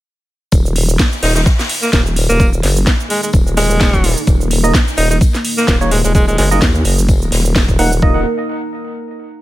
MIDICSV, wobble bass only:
0, 0, Header, 1, 2, 480
1, 0, Start_track
1, 0, Key_signature, -6, "minor"
1, 0, Tempo, 468750
1, 536, Time_signature, 4, 2, 24, 8
1, 9643, End_track
2, 0, Start_track
2, 0, Title_t, "Wobble bass"
2, 0, Program_c, 0, 39
2, 536, Note_on_c, 0, 27, 98
2, 999, Note_off_c, 0, 27, 0
2, 1255, Note_on_c, 0, 27, 102
2, 1478, Note_off_c, 0, 27, 0
2, 1976, Note_on_c, 0, 27, 98
2, 2328, Note_off_c, 0, 27, 0
2, 2349, Note_on_c, 0, 27, 94
2, 2679, Note_off_c, 0, 27, 0
2, 2696, Note_on_c, 0, 30, 92
2, 2919, Note_off_c, 0, 30, 0
2, 3416, Note_on_c, 0, 27, 92
2, 3879, Note_off_c, 0, 27, 0
2, 3896, Note_on_c, 0, 27, 101
2, 4248, Note_off_c, 0, 27, 0
2, 4376, Note_on_c, 0, 27, 101
2, 4839, Note_off_c, 0, 27, 0
2, 5096, Note_on_c, 0, 27, 100
2, 5319, Note_off_c, 0, 27, 0
2, 5816, Note_on_c, 0, 27, 101
2, 6168, Note_off_c, 0, 27, 0
2, 6190, Note_on_c, 0, 27, 96
2, 6519, Note_off_c, 0, 27, 0
2, 6536, Note_on_c, 0, 30, 95
2, 6759, Note_off_c, 0, 30, 0
2, 6776, Note_on_c, 0, 39, 96
2, 6999, Note_off_c, 0, 39, 0
2, 7016, Note_on_c, 0, 30, 102
2, 7479, Note_off_c, 0, 30, 0
2, 7496, Note_on_c, 0, 27, 103
2, 7848, Note_off_c, 0, 27, 0
2, 7870, Note_on_c, 0, 27, 97
2, 7959, Note_off_c, 0, 27, 0
2, 7976, Note_on_c, 0, 27, 93
2, 8199, Note_off_c, 0, 27, 0
2, 8216, Note_on_c, 0, 27, 98
2, 8439, Note_off_c, 0, 27, 0
2, 9643, End_track
0, 0, End_of_file